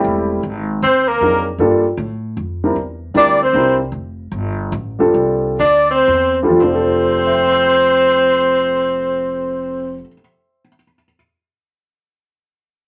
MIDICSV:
0, 0, Header, 1, 5, 480
1, 0, Start_track
1, 0, Key_signature, -1, "major"
1, 0, Tempo, 389610
1, 531, Time_signature, 3, 2, 24, 8
1, 5330, Tempo, 423131
1, 6770, Tempo, 503356
1, 7730, Tempo, 555042
1, 13154, End_track
2, 0, Start_track
2, 0, Title_t, "Flugelhorn"
2, 0, Program_c, 0, 56
2, 1045, Note_on_c, 0, 72, 86
2, 1326, Note_on_c, 0, 70, 94
2, 1344, Note_off_c, 0, 72, 0
2, 1808, Note_off_c, 0, 70, 0
2, 3906, Note_on_c, 0, 74, 104
2, 4193, Note_off_c, 0, 74, 0
2, 4240, Note_on_c, 0, 72, 89
2, 4670, Note_off_c, 0, 72, 0
2, 6812, Note_on_c, 0, 74, 102
2, 7071, Note_off_c, 0, 74, 0
2, 7100, Note_on_c, 0, 72, 98
2, 7538, Note_off_c, 0, 72, 0
2, 7746, Note_on_c, 0, 72, 93
2, 10692, Note_off_c, 0, 72, 0
2, 13154, End_track
3, 0, Start_track
3, 0, Title_t, "Grand piano"
3, 0, Program_c, 1, 0
3, 0, Note_on_c, 1, 55, 87
3, 0, Note_on_c, 1, 57, 72
3, 0, Note_on_c, 1, 60, 73
3, 0, Note_on_c, 1, 64, 79
3, 0, Note_on_c, 1, 67, 87
3, 493, Note_off_c, 1, 55, 0
3, 494, Note_off_c, 1, 60, 0
3, 495, Note_off_c, 1, 57, 0
3, 496, Note_off_c, 1, 64, 0
3, 499, Note_off_c, 1, 67, 0
3, 1500, Note_on_c, 1, 54, 53
3, 1502, Note_on_c, 1, 60, 47
3, 1507, Note_on_c, 1, 63, 49
3, 1509, Note_on_c, 1, 62, 48
3, 1510, Note_on_c, 1, 68, 58
3, 1782, Note_off_c, 1, 54, 0
3, 1783, Note_off_c, 1, 60, 0
3, 1786, Note_off_c, 1, 63, 0
3, 1787, Note_off_c, 1, 62, 0
3, 1787, Note_off_c, 1, 68, 0
3, 1960, Note_on_c, 1, 55, 74
3, 1967, Note_on_c, 1, 58, 63
3, 1971, Note_on_c, 1, 62, 68
3, 1971, Note_on_c, 1, 69, 85
3, 1978, Note_on_c, 1, 65, 70
3, 2252, Note_off_c, 1, 55, 0
3, 2255, Note_off_c, 1, 58, 0
3, 2257, Note_off_c, 1, 62, 0
3, 2257, Note_off_c, 1, 69, 0
3, 2261, Note_off_c, 1, 65, 0
3, 3249, Note_on_c, 1, 55, 72
3, 3250, Note_on_c, 1, 60, 70
3, 3250, Note_on_c, 1, 62, 67
3, 3260, Note_on_c, 1, 64, 60
3, 3264, Note_on_c, 1, 70, 75
3, 3393, Note_off_c, 1, 55, 0
3, 3394, Note_off_c, 1, 60, 0
3, 3394, Note_off_c, 1, 62, 0
3, 3399, Note_off_c, 1, 64, 0
3, 3401, Note_off_c, 1, 70, 0
3, 3872, Note_on_c, 1, 55, 76
3, 3877, Note_on_c, 1, 60, 59
3, 3877, Note_on_c, 1, 62, 66
3, 3886, Note_on_c, 1, 64, 62
3, 3891, Note_on_c, 1, 70, 74
3, 4166, Note_off_c, 1, 55, 0
3, 4169, Note_off_c, 1, 60, 0
3, 4169, Note_off_c, 1, 62, 0
3, 4173, Note_off_c, 1, 64, 0
3, 4176, Note_off_c, 1, 70, 0
3, 4365, Note_on_c, 1, 60, 68
3, 4370, Note_on_c, 1, 62, 66
3, 4372, Note_on_c, 1, 55, 77
3, 4376, Note_on_c, 1, 70, 74
3, 4377, Note_on_c, 1, 64, 67
3, 4652, Note_off_c, 1, 60, 0
3, 4655, Note_off_c, 1, 62, 0
3, 4656, Note_off_c, 1, 55, 0
3, 4658, Note_off_c, 1, 64, 0
3, 4658, Note_off_c, 1, 70, 0
3, 6080, Note_on_c, 1, 55, 70
3, 6091, Note_on_c, 1, 62, 65
3, 6093, Note_on_c, 1, 60, 65
3, 6094, Note_on_c, 1, 65, 67
3, 6096, Note_on_c, 1, 69, 85
3, 6724, Note_off_c, 1, 55, 0
3, 6730, Note_off_c, 1, 60, 0
3, 6730, Note_off_c, 1, 62, 0
3, 6731, Note_off_c, 1, 65, 0
3, 6732, Note_off_c, 1, 69, 0
3, 7562, Note_on_c, 1, 55, 79
3, 7565, Note_on_c, 1, 62, 64
3, 7567, Note_on_c, 1, 60, 66
3, 7574, Note_on_c, 1, 69, 74
3, 7577, Note_on_c, 1, 65, 69
3, 7629, Note_on_c, 1, 41, 63
3, 7683, Note_on_c, 1, 53, 68
3, 7733, Note_off_c, 1, 55, 0
3, 7733, Note_off_c, 1, 62, 0
3, 7735, Note_off_c, 1, 60, 0
3, 7739, Note_off_c, 1, 69, 0
3, 7740, Note_off_c, 1, 65, 0
3, 7746, Note_on_c, 1, 62, 62
3, 7799, Note_on_c, 1, 67, 60
3, 7855, Note_on_c, 1, 69, 75
3, 8233, Note_on_c, 1, 72, 47
3, 8297, Note_on_c, 1, 76, 47
3, 8367, Note_on_c, 1, 79, 40
3, 8445, Note_on_c, 1, 84, 48
3, 8526, Note_on_c, 1, 88, 43
3, 8622, Note_on_c, 1, 91, 41
3, 8720, Note_on_c, 1, 96, 36
3, 10619, Note_off_c, 1, 41, 0
3, 10669, Note_off_c, 1, 53, 0
3, 10727, Note_off_c, 1, 62, 0
3, 10780, Note_off_c, 1, 67, 0
3, 10836, Note_off_c, 1, 69, 0
3, 11179, Note_off_c, 1, 72, 0
3, 11244, Note_off_c, 1, 76, 0
3, 11314, Note_off_c, 1, 79, 0
3, 11391, Note_off_c, 1, 84, 0
3, 11472, Note_off_c, 1, 88, 0
3, 11569, Note_off_c, 1, 91, 0
3, 11667, Note_off_c, 1, 96, 0
3, 13154, End_track
4, 0, Start_track
4, 0, Title_t, "Tenor saxophone"
4, 0, Program_c, 2, 66
4, 1021, Note_on_c, 2, 60, 83
4, 1330, Note_on_c, 2, 58, 74
4, 1349, Note_off_c, 2, 60, 0
4, 1810, Note_off_c, 2, 58, 0
4, 3910, Note_on_c, 2, 62, 90
4, 4195, Note_off_c, 2, 62, 0
4, 4219, Note_on_c, 2, 60, 76
4, 4659, Note_off_c, 2, 60, 0
4, 6773, Note_on_c, 2, 62, 96
4, 7050, Note_off_c, 2, 62, 0
4, 7066, Note_on_c, 2, 60, 87
4, 7520, Note_off_c, 2, 60, 0
4, 7732, Note_on_c, 2, 60, 84
4, 10679, Note_off_c, 2, 60, 0
4, 13154, End_track
5, 0, Start_track
5, 0, Title_t, "Upright bass"
5, 0, Program_c, 3, 32
5, 51, Note_on_c, 3, 28, 85
5, 517, Note_off_c, 3, 28, 0
5, 533, Note_on_c, 3, 32, 86
5, 998, Note_off_c, 3, 32, 0
5, 1014, Note_on_c, 3, 39, 86
5, 1478, Note_off_c, 3, 39, 0
5, 1486, Note_on_c, 3, 41, 82
5, 1944, Note_off_c, 3, 41, 0
5, 1951, Note_on_c, 3, 43, 71
5, 2426, Note_off_c, 3, 43, 0
5, 2432, Note_on_c, 3, 45, 91
5, 2906, Note_off_c, 3, 45, 0
5, 2917, Note_on_c, 3, 41, 83
5, 3388, Note_off_c, 3, 41, 0
5, 3398, Note_on_c, 3, 40, 79
5, 3868, Note_off_c, 3, 40, 0
5, 3877, Note_on_c, 3, 38, 86
5, 4343, Note_off_c, 3, 38, 0
5, 4350, Note_on_c, 3, 36, 85
5, 4820, Note_off_c, 3, 36, 0
5, 4827, Note_on_c, 3, 29, 74
5, 5305, Note_off_c, 3, 29, 0
5, 5316, Note_on_c, 3, 31, 85
5, 5766, Note_off_c, 3, 31, 0
5, 5778, Note_on_c, 3, 33, 95
5, 6245, Note_off_c, 3, 33, 0
5, 6257, Note_on_c, 3, 36, 85
5, 6751, Note_off_c, 3, 36, 0
5, 6768, Note_on_c, 3, 38, 88
5, 7213, Note_off_c, 3, 38, 0
5, 7228, Note_on_c, 3, 40, 89
5, 7715, Note_off_c, 3, 40, 0
5, 7728, Note_on_c, 3, 29, 92
5, 10674, Note_off_c, 3, 29, 0
5, 13154, End_track
0, 0, End_of_file